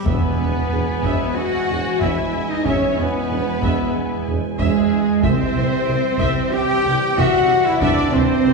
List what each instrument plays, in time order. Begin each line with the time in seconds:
0.05 tuba E1, double bass section E2, timpani E2, trombone section E3 G#3, french horn section B3, trumpet B3, cello section B3, violin section B4, viola section E5 G#5, taiko, impact
0.38 tuba E1, double bass section E2, viola section B4
0.71 tuba E1, double bass section E2, viola section G#4
1.03 tuba E1, double bass section E2, viola section E5, taiko
1.34 french horn section F#4, cello section F#4, trumpet F#4, violin section F#5
1.69 tuba E1, double bass section E2, viola section G#4
2.01 tuba E1, double bass section E2, cello section E4, trumpet E4, french horn section E4, violin section E5, viola section E5, taiko
2.49 french horn section D#4, trumpet D#4, cello section D#4, violin section D#5
2.65 tuba E1, double bass section E2, trumpet C#4, cello section C#4, french horn section C#4, violin section C#5, viola section E5, taiko
2.97 tuba E1, double bass section E2, french horn section B3, trumpet B3, cello section B3, violin section B4, viola section B4
3.29 tuba E1, double bass section E2, viola section G#4
3.62 tuba E1, double bass section E2, viola section E5, taiko
4.26 tuba E1, double bass section E2, viola section G#4
4.58 tuba E1, double bass section E2, trumpet G#3, french horn section G#3, cello section G#3, violin section G#4, viola section E5, taiko
5.22 double bass section C2, tuba C2, trombone section E3 G3, french horn section C4, cello section C4, trumpet C4, violin section C5, viola section E5, taiko
5.55 double bass section C2, tuba C2, viola section C5
5.87 double bass section C2, tuba C2, viola section G4
6.20 double bass section C2, tuba C2, viola section E5, taiko
6.52 cello section G4, trumpet G4, french horn section G4, violin section G5
6.85 double bass section C2, tuba C2, viola section G4
7.17 double bass section C2, tuba C2, cello section F#4, french horn section F#4, trumpet F#4, viola section E5, violin section F#5, taiko
7.65 french horn section E4, trumpet E4, cello section E4, violin section E5
7.80 double bass section C2, tuba C2, french horn section D4, trumpet D4, cello section D4, violin section D5, viola section E5, taiko
8.13 tuba C2, double bass section C2, cello section C4, french horn section C4, trumpet C4, violin section C5, viola section C5, taiko low
8.46 tuba C2, double bass section C2, viola section G4